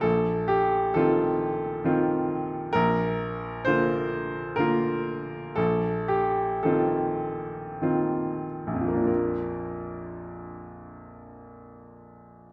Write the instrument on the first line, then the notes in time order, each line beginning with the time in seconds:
upright piano
0.01 A#1 A4
0.48 G4
0.94 D#3 C4 F4 A4
1.84 D#3 C4 F4
2.73 A#1 A#4
3.65 D3 A#3 F4 C5
4.56 D3 A#3 A#4
4.60 F4
5.56 A#1 A4
6.08 G4
6.63 D#3 C4 F4 A4
7.82 D#3 C4 F4
8.67 A#1
8.74 F2
8.81 F3
8.88 A#3
8.94 D4
9.02 F4
9.07 A#4